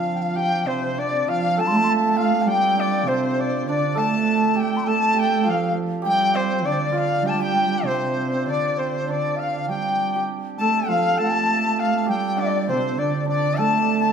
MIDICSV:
0, 0, Header, 1, 5, 480
1, 0, Start_track
1, 0, Tempo, 606673
1, 55, Time_signature, 4, 2, 24, 8
1, 1494, Tempo, 594059
1, 5814, Tempo, 606061
1, 9174, Tempo, 595238
1, 11310, End_track
2, 0, Start_track
2, 0, Title_t, "Dizi"
2, 0, Program_c, 0, 73
2, 0, Note_on_c, 0, 77, 67
2, 107, Note_off_c, 0, 77, 0
2, 116, Note_on_c, 0, 79, 54
2, 173, Note_on_c, 0, 77, 70
2, 185, Note_off_c, 0, 79, 0
2, 553, Note_on_c, 0, 72, 65
2, 565, Note_off_c, 0, 77, 0
2, 795, Note_on_c, 0, 74, 71
2, 807, Note_off_c, 0, 72, 0
2, 1025, Note_on_c, 0, 77, 77
2, 1037, Note_off_c, 0, 74, 0
2, 1270, Note_on_c, 0, 81, 73
2, 1282, Note_off_c, 0, 77, 0
2, 1324, Note_on_c, 0, 84, 71
2, 1336, Note_off_c, 0, 81, 0
2, 1400, Note_on_c, 0, 81, 71
2, 1412, Note_off_c, 0, 84, 0
2, 1456, Note_on_c, 0, 84, 73
2, 1467, Note_off_c, 0, 81, 0
2, 1506, Note_on_c, 0, 81, 81
2, 1518, Note_off_c, 0, 84, 0
2, 1722, Note_on_c, 0, 77, 77
2, 1734, Note_off_c, 0, 81, 0
2, 1925, Note_on_c, 0, 81, 60
2, 1937, Note_off_c, 0, 77, 0
2, 1964, Note_on_c, 0, 79, 84
2, 1976, Note_off_c, 0, 81, 0
2, 2459, Note_on_c, 0, 72, 71
2, 2471, Note_off_c, 0, 79, 0
2, 2941, Note_on_c, 0, 74, 75
2, 2953, Note_off_c, 0, 72, 0
2, 3159, Note_off_c, 0, 74, 0
2, 3164, Note_on_c, 0, 81, 86
2, 3655, Note_on_c, 0, 79, 73
2, 3667, Note_off_c, 0, 81, 0
2, 3818, Note_on_c, 0, 84, 61
2, 3830, Note_off_c, 0, 79, 0
2, 3883, Note_on_c, 0, 81, 84
2, 3895, Note_off_c, 0, 84, 0
2, 4360, Note_on_c, 0, 77, 68
2, 4372, Note_off_c, 0, 81, 0
2, 4602, Note_off_c, 0, 77, 0
2, 4854, Note_on_c, 0, 79, 86
2, 5098, Note_on_c, 0, 72, 74
2, 5110, Note_off_c, 0, 79, 0
2, 5336, Note_off_c, 0, 72, 0
2, 5349, Note_on_c, 0, 74, 70
2, 5405, Note_on_c, 0, 72, 61
2, 5418, Note_off_c, 0, 74, 0
2, 5463, Note_on_c, 0, 74, 77
2, 5476, Note_off_c, 0, 72, 0
2, 5842, Note_on_c, 0, 79, 85
2, 5853, Note_off_c, 0, 74, 0
2, 5939, Note_off_c, 0, 79, 0
2, 5955, Note_on_c, 0, 79, 76
2, 6280, Note_off_c, 0, 79, 0
2, 6337, Note_on_c, 0, 72, 67
2, 6649, Note_off_c, 0, 72, 0
2, 6656, Note_on_c, 0, 72, 61
2, 6789, Note_on_c, 0, 74, 68
2, 6801, Note_off_c, 0, 72, 0
2, 7032, Note_on_c, 0, 72, 60
2, 7044, Note_off_c, 0, 74, 0
2, 7262, Note_on_c, 0, 74, 62
2, 7274, Note_off_c, 0, 72, 0
2, 7499, Note_on_c, 0, 77, 64
2, 7510, Note_off_c, 0, 74, 0
2, 7738, Note_off_c, 0, 77, 0
2, 7742, Note_on_c, 0, 79, 71
2, 8075, Note_off_c, 0, 79, 0
2, 8120, Note_on_c, 0, 79, 59
2, 8221, Note_off_c, 0, 79, 0
2, 8471, Note_on_c, 0, 81, 77
2, 8636, Note_off_c, 0, 81, 0
2, 8665, Note_on_c, 0, 79, 55
2, 8709, Note_on_c, 0, 77, 77
2, 8721, Note_off_c, 0, 79, 0
2, 8950, Note_on_c, 0, 81, 78
2, 8962, Note_off_c, 0, 77, 0
2, 9668, Note_on_c, 0, 79, 79
2, 9680, Note_off_c, 0, 81, 0
2, 9900, Note_on_c, 0, 74, 70
2, 9912, Note_off_c, 0, 79, 0
2, 10158, Note_on_c, 0, 72, 73
2, 10170, Note_off_c, 0, 74, 0
2, 10389, Note_on_c, 0, 74, 69
2, 10401, Note_off_c, 0, 72, 0
2, 10625, Note_off_c, 0, 74, 0
2, 10634, Note_on_c, 0, 74, 74
2, 10866, Note_on_c, 0, 81, 78
2, 10878, Note_off_c, 0, 74, 0
2, 11208, Note_off_c, 0, 81, 0
2, 11213, Note_on_c, 0, 81, 77
2, 11310, Note_off_c, 0, 81, 0
2, 11310, End_track
3, 0, Start_track
3, 0, Title_t, "Dizi"
3, 0, Program_c, 1, 73
3, 0, Note_on_c, 1, 77, 76
3, 281, Note_on_c, 1, 79, 89
3, 293, Note_off_c, 1, 77, 0
3, 526, Note_on_c, 1, 72, 79
3, 538, Note_off_c, 1, 79, 0
3, 780, Note_on_c, 1, 74, 83
3, 791, Note_off_c, 1, 72, 0
3, 1017, Note_on_c, 1, 77, 87
3, 1029, Note_off_c, 1, 74, 0
3, 1257, Note_on_c, 1, 81, 88
3, 1269, Note_off_c, 1, 77, 0
3, 1522, Note_off_c, 1, 81, 0
3, 1743, Note_on_c, 1, 77, 81
3, 1972, Note_on_c, 1, 79, 97
3, 1984, Note_off_c, 1, 77, 0
3, 2228, Note_on_c, 1, 74, 83
3, 2240, Note_off_c, 1, 79, 0
3, 2454, Note_on_c, 1, 72, 74
3, 2466, Note_off_c, 1, 74, 0
3, 2715, Note_on_c, 1, 74, 77
3, 2728, Note_off_c, 1, 72, 0
3, 2925, Note_off_c, 1, 74, 0
3, 2930, Note_on_c, 1, 74, 82
3, 3185, Note_on_c, 1, 81, 88
3, 3197, Note_off_c, 1, 74, 0
3, 3684, Note_on_c, 1, 79, 82
3, 3697, Note_off_c, 1, 81, 0
3, 3908, Note_on_c, 1, 81, 98
3, 3920, Note_off_c, 1, 79, 0
3, 4160, Note_on_c, 1, 79, 89
3, 4172, Note_off_c, 1, 81, 0
3, 4408, Note_on_c, 1, 77, 74
3, 4420, Note_off_c, 1, 79, 0
3, 4626, Note_off_c, 1, 77, 0
3, 4889, Note_on_c, 1, 79, 106
3, 5103, Note_on_c, 1, 72, 88
3, 5115, Note_off_c, 1, 79, 0
3, 5344, Note_on_c, 1, 74, 84
3, 5356, Note_off_c, 1, 72, 0
3, 5608, Note_on_c, 1, 77, 82
3, 5620, Note_off_c, 1, 74, 0
3, 5829, Note_off_c, 1, 77, 0
3, 5834, Note_on_c, 1, 79, 92
3, 5857, Note_on_c, 1, 81, 84
3, 5869, Note_off_c, 1, 79, 0
3, 5948, Note_on_c, 1, 79, 98
3, 5960, Note_off_c, 1, 81, 0
3, 6310, Note_on_c, 1, 72, 82
3, 6322, Note_off_c, 1, 79, 0
3, 6809, Note_on_c, 1, 74, 81
3, 6821, Note_off_c, 1, 72, 0
3, 7043, Note_on_c, 1, 72, 67
3, 7055, Note_off_c, 1, 74, 0
3, 7293, Note_on_c, 1, 74, 70
3, 7305, Note_off_c, 1, 72, 0
3, 7521, Note_on_c, 1, 77, 72
3, 7532, Note_off_c, 1, 74, 0
3, 7749, Note_off_c, 1, 77, 0
3, 7764, Note_on_c, 1, 79, 79
3, 8199, Note_off_c, 1, 79, 0
3, 8460, Note_on_c, 1, 81, 87
3, 8706, Note_on_c, 1, 77, 86
3, 8718, Note_off_c, 1, 81, 0
3, 8936, Note_on_c, 1, 81, 97
3, 8948, Note_off_c, 1, 77, 0
3, 9428, Note_on_c, 1, 77, 81
3, 9440, Note_off_c, 1, 81, 0
3, 9664, Note_off_c, 1, 77, 0
3, 9667, Note_on_c, 1, 79, 91
3, 9907, Note_on_c, 1, 74, 80
3, 9919, Note_off_c, 1, 79, 0
3, 10138, Note_off_c, 1, 74, 0
3, 10142, Note_on_c, 1, 72, 75
3, 10390, Note_on_c, 1, 74, 78
3, 10402, Note_off_c, 1, 72, 0
3, 10624, Note_off_c, 1, 74, 0
3, 10629, Note_on_c, 1, 74, 85
3, 10883, Note_on_c, 1, 81, 88
3, 10895, Note_off_c, 1, 74, 0
3, 11286, Note_off_c, 1, 81, 0
3, 11286, Note_on_c, 1, 81, 59
3, 11310, Note_off_c, 1, 81, 0
3, 11310, End_track
4, 0, Start_track
4, 0, Title_t, "Hammered dulcimer"
4, 0, Program_c, 2, 15
4, 0, Note_on_c, 2, 60, 49
4, 0, Note_on_c, 2, 62, 58
4, 0, Note_on_c, 2, 65, 59
4, 282, Note_on_c, 2, 67, 66
4, 518, Note_off_c, 2, 60, 0
4, 521, Note_on_c, 2, 60, 59
4, 767, Note_off_c, 2, 62, 0
4, 770, Note_on_c, 2, 62, 65
4, 1007, Note_off_c, 2, 65, 0
4, 1010, Note_on_c, 2, 65, 72
4, 1238, Note_on_c, 2, 69, 78
4, 1728, Note_off_c, 2, 65, 0
4, 1731, Note_on_c, 2, 65, 75
4, 1963, Note_off_c, 2, 67, 0
4, 1967, Note_on_c, 2, 67, 76
4, 2201, Note_off_c, 2, 62, 0
4, 2204, Note_on_c, 2, 62, 63
4, 2448, Note_off_c, 2, 60, 0
4, 2451, Note_on_c, 2, 60, 65
4, 2692, Note_off_c, 2, 62, 0
4, 2695, Note_on_c, 2, 62, 67
4, 2944, Note_off_c, 2, 62, 0
4, 2948, Note_on_c, 2, 62, 74
4, 3153, Note_off_c, 2, 69, 0
4, 3156, Note_on_c, 2, 69, 73
4, 3640, Note_off_c, 2, 67, 0
4, 3643, Note_on_c, 2, 67, 69
4, 3894, Note_off_c, 2, 69, 0
4, 3897, Note_on_c, 2, 69, 75
4, 4115, Note_off_c, 2, 67, 0
4, 4118, Note_on_c, 2, 67, 72
4, 4360, Note_off_c, 2, 65, 0
4, 4363, Note_on_c, 2, 65, 64
4, 4828, Note_off_c, 2, 67, 0
4, 4831, Note_on_c, 2, 67, 88
4, 5088, Note_off_c, 2, 60, 0
4, 5091, Note_on_c, 2, 60, 69
4, 5349, Note_off_c, 2, 62, 0
4, 5352, Note_on_c, 2, 62, 69
4, 5557, Note_off_c, 2, 65, 0
4, 5561, Note_on_c, 2, 65, 78
4, 5825, Note_off_c, 2, 67, 0
4, 5828, Note_on_c, 2, 67, 83
4, 5934, Note_off_c, 2, 67, 0
4, 5937, Note_on_c, 2, 67, 78
4, 6253, Note_off_c, 2, 69, 0
4, 6307, Note_off_c, 2, 60, 0
4, 6311, Note_on_c, 2, 60, 63
4, 6644, Note_off_c, 2, 62, 0
4, 6647, Note_on_c, 2, 62, 43
4, 6682, Note_off_c, 2, 60, 0
4, 6685, Note_on_c, 2, 60, 57
4, 6804, Note_off_c, 2, 62, 0
4, 6807, Note_on_c, 2, 62, 68
4, 7041, Note_off_c, 2, 60, 0
4, 7044, Note_on_c, 2, 60, 54
4, 7273, Note_off_c, 2, 62, 0
4, 7276, Note_on_c, 2, 62, 63
4, 7754, Note_off_c, 2, 67, 0
4, 7758, Note_on_c, 2, 67, 69
4, 8123, Note_off_c, 2, 67, 0
4, 8127, Note_on_c, 2, 67, 58
4, 8235, Note_off_c, 2, 65, 0
4, 8484, Note_on_c, 2, 69, 74
4, 8704, Note_on_c, 2, 65, 77
4, 8932, Note_off_c, 2, 69, 0
4, 8935, Note_on_c, 2, 69, 79
4, 9643, Note_off_c, 2, 67, 0
4, 9646, Note_on_c, 2, 67, 80
4, 9890, Note_off_c, 2, 62, 0
4, 9893, Note_on_c, 2, 62, 71
4, 10137, Note_off_c, 2, 60, 0
4, 10141, Note_on_c, 2, 60, 65
4, 10379, Note_off_c, 2, 62, 0
4, 10382, Note_on_c, 2, 62, 65
4, 10602, Note_off_c, 2, 62, 0
4, 10605, Note_on_c, 2, 62, 75
4, 10867, Note_off_c, 2, 69, 0
4, 10871, Note_on_c, 2, 69, 77
4, 11310, Note_off_c, 2, 60, 0
4, 11310, Note_off_c, 2, 62, 0
4, 11310, Note_off_c, 2, 65, 0
4, 11310, Note_off_c, 2, 67, 0
4, 11310, Note_off_c, 2, 69, 0
4, 11310, End_track
5, 0, Start_track
5, 0, Title_t, "Cello"
5, 0, Program_c, 3, 42
5, 0, Note_on_c, 3, 53, 62
5, 525, Note_on_c, 3, 48, 70
5, 537, Note_off_c, 3, 53, 0
5, 1013, Note_off_c, 3, 48, 0
5, 1022, Note_on_c, 3, 53, 75
5, 1252, Note_on_c, 3, 57, 90
5, 1264, Note_off_c, 3, 53, 0
5, 1948, Note_on_c, 3, 55, 79
5, 1960, Note_off_c, 3, 57, 0
5, 2430, Note_on_c, 3, 48, 74
5, 2442, Note_off_c, 3, 55, 0
5, 2921, Note_on_c, 3, 50, 67
5, 2933, Note_off_c, 3, 48, 0
5, 3164, Note_on_c, 3, 57, 83
5, 3176, Note_off_c, 3, 50, 0
5, 3879, Note_off_c, 3, 57, 0
5, 3884, Note_on_c, 3, 57, 81
5, 4384, Note_on_c, 3, 53, 70
5, 4396, Note_off_c, 3, 57, 0
5, 4614, Note_off_c, 3, 53, 0
5, 4853, Note_on_c, 3, 55, 80
5, 5335, Note_on_c, 3, 50, 70
5, 5348, Note_off_c, 3, 55, 0
5, 5802, Note_on_c, 3, 55, 77
5, 5814, Note_off_c, 3, 50, 0
5, 5909, Note_off_c, 3, 55, 0
5, 5914, Note_on_c, 3, 55, 74
5, 6291, Note_on_c, 3, 48, 74
5, 6303, Note_off_c, 3, 55, 0
5, 6774, Note_on_c, 3, 50, 64
5, 6786, Note_off_c, 3, 48, 0
5, 7251, Note_off_c, 3, 50, 0
5, 7255, Note_on_c, 3, 50, 60
5, 7751, Note_on_c, 3, 55, 63
5, 7763, Note_off_c, 3, 50, 0
5, 8224, Note_off_c, 3, 55, 0
5, 8461, Note_on_c, 3, 57, 76
5, 8697, Note_on_c, 3, 53, 70
5, 8709, Note_off_c, 3, 57, 0
5, 8937, Note_off_c, 3, 53, 0
5, 8968, Note_on_c, 3, 57, 80
5, 9656, Note_on_c, 3, 55, 80
5, 9668, Note_off_c, 3, 57, 0
5, 10151, Note_on_c, 3, 48, 71
5, 10163, Note_off_c, 3, 55, 0
5, 10380, Note_on_c, 3, 50, 71
5, 10392, Note_off_c, 3, 48, 0
5, 10605, Note_off_c, 3, 50, 0
5, 10610, Note_on_c, 3, 50, 69
5, 10873, Note_on_c, 3, 57, 82
5, 10886, Note_off_c, 3, 50, 0
5, 11310, Note_off_c, 3, 57, 0
5, 11310, End_track
0, 0, End_of_file